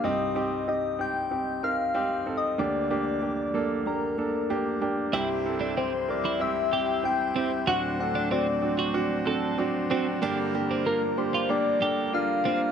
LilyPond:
<<
  \new Staff \with { instrumentName = "Soft synth lead" } { \time 4/4 \key c \dorian \tempo 4 = 94 ees''4 ees''8 g''4 f''8~ \tuplet 3/2 { f''4 ees''8 } | d''2 bes'4. r8 | r4 c''8 d''8 e''4 g''4 | fis''8 fis''8 d''2~ d''8 r8 |
r4 bes'8 c''8 d''4 f''4 | }
  \new Staff \with { instrumentName = "Clean electric guitar" } { \time 4/4 \key c \dorian r1 | r1 | e'16 r8 d'16 c'16 r8 e'16 r8 g'8 r8 c'16 r16 | fis'16 r8 d'16 c'16 r8 fis'16 r8 a'8 r8 c'16 r16 |
d'16 r8 c'16 bes16 r8 f'16 r8 g'8 r8 c'16 r16 | }
  \new Staff \with { instrumentName = "Grand piano" } { \time 4/4 \key c \dorian <c' ees' g'>8 <c' ees' g'>8 <c' ees' g'>8 <c' ees' g'>8 <c' ees' g'>8 <c' ees' bes'>8 <c' ees' g'>8 <c' ees' a'>8 | <bes d' g'>8 <bes d' g'>8 <bes d' g'>8 <bes d' a'>8 <bes d' g'>8 <bes d' a'>8 <bes d' g'>8 <bes d' g'>8 | <c' e' g'>8 <c' e' a'>8 <c' e' g'>8 <c' e' bes'>8 <c' e' g'>8 <c' e' g'>8 <c' e' g'>8 <c' e' g'>8 | <c' d' fis'>8 <c' d' a'>8 <c' d' fis'>8 <c' d' fis'>8 <c' d' fis'>8 <c' d' fis'>8 <c' d' fis'>8 <c' d' fis'>8 |
<bes d' g'>8 <bes d' g'>8 <bes d' f'>8 <bes d' g'>8 <bes d' g'>8 <bes d' a'>8 <bes d' f'>8 <bes d' f'>8 | }
  \new Staff \with { instrumentName = "Grand piano" } { \clef bass \time 4/4 \key c \dorian <c, g,>1 | <d, d>1 | <c, g,>1 | <d, a,>1 |
<g, d>1 | }
  \new Staff \with { instrumentName = "Pipe organ" } { \time 4/4 \key c \dorian r1 | r1 | c''1~ | c''1 |
bes'1 | }
  \new Staff \with { instrumentName = "Pipe organ" } { \time 4/4 \key c \dorian r1 | r1 | <g e'>1 | <fis d'>1 |
<g d'>1 | }
>>